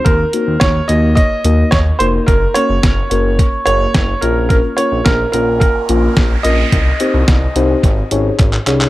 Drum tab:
HH |x-x-x-x-x-x-x-x-|x-x-x-x-x-x-x-x-|x-x-x-x-x-x-x-x-|x-x-x-x-x-x-x-x-|
CP |----------------|----------------|----------------|------------xxxx|
SD |----o-------o---|----o-------o---|----o-------o---|----o-----------|
BD |o---o---o---o---|o---o---o---o---|o---o---o---o---|o---o---o---o---|